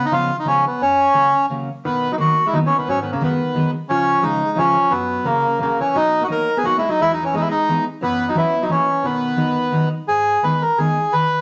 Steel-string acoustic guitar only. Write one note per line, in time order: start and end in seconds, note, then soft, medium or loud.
0.11 0.29 C#3 medium
0.11 0.30 F3 medium
0.11 0.30 G#3 medium
0.11 0.30 B3 medium
0.45 0.63 C#3 medium
0.45 0.63 F3 medium
0.45 0.64 G#3 medium
0.45 0.64 B3 medium
0.80 1.06 F#2 medium
1.13 1.32 C#3 medium
1.13 1.32 F#3 medium
1.13 1.33 A#3 medium
1.13 1.33 C#4 medium
1.49 1.68 C#3 medium
1.49 1.68 F#3 medium
1.49 1.68 A#3 medium
1.49 1.68 C#4 medium
1.85 2.10 B2 medium
2.18 2.37 D#3 medium
2.18 2.37 F#3 medium
2.18 2.37 A#3 medium
2.18 2.37 B3 medium
2.52 2.71 D#3 medium
2.52 2.71 F#3 medium
2.52 2.72 A#3 soft
2.52 2.72 B3 medium
2.87 3.13 G#2 medium
3.21 3.39 D#3 medium
3.21 3.39 F#3 medium
3.21 3.39 G#3 medium
3.21 3.40 B3 medium
3.54 3.73 D#3 medium
3.54 3.73 F#3 medium
3.54 3.73 G#3 medium
3.54 3.73 B3 medium
3.89 4.15 C#3 medium
4.22 4.40 C#3 medium
4.22 4.41 F3 medium
4.22 4.41 G#3 medium
4.22 4.41 C#4 medium
4.55 4.74 C#3 medium
4.55 4.74 F3 medium
4.55 4.75 G#3 medium
4.55 4.75 C#4 medium
4.90 5.16 F#2 medium
5.24 5.43 C#3 medium
5.24 5.43 F#3 medium
5.24 5.44 A#3 medium
5.24 5.44 C#4 medium
5.58 5.78 C#3 medium
5.58 5.78 F#3 medium
5.58 5.79 A#3 medium
5.58 5.79 C#4 medium
5.95 6.21 B2 medium
6.29 6.48 F#3 medium
6.29 6.48 A#3 medium
6.29 6.49 B3 medium
6.29 6.49 D#4 medium
6.63 6.82 F#3 medium
6.63 6.83 A#3 soft
6.63 6.83 B3 medium
6.63 6.83 D#4 medium
7.00 7.25 E2 medium
7.33 7.52 E3 medium
7.33 7.52 G#3 medium
7.33 7.52 B3 medium
7.33 7.52 D#4 medium
7.68 7.86 E3 medium
7.68 7.86 G#3 medium
7.68 7.86 B3 medium
7.68 7.87 D#4 medium
8.01 8.27 F#2 medium
8.34 8.53 E3 medium
8.34 8.54 F#3 medium
8.34 8.54 B3 medium
8.34 8.54 C#4 medium
8.69 8.88 E3 medium
8.69 8.88 F#3 medium
8.69 8.88 A#3 medium
8.69 8.88 C#4 medium
9.03 9.30 B2 medium
9.36 9.56 D#3 medium
9.36 9.56 F#3 medium
9.36 9.57 B3 medium
9.36 9.57 D#4 medium
9.72 9.92 D#3 medium
9.72 9.92 F#3 medium
9.72 9.92 B3 medium
9.72 9.92 D#4 medium
10.08 10.35 G#2 soft
10.42 10.62 D#3 medium
10.42 10.62 G#3 medium
10.42 10.62 B3 medium
10.42 10.63 D#4 medium
10.78 10.97 D#3 medium
10.78 10.97 G#3 medium
10.78 10.97 B3 medium
10.78 10.97 D#4 medium
11.13 11.39 D#3 medium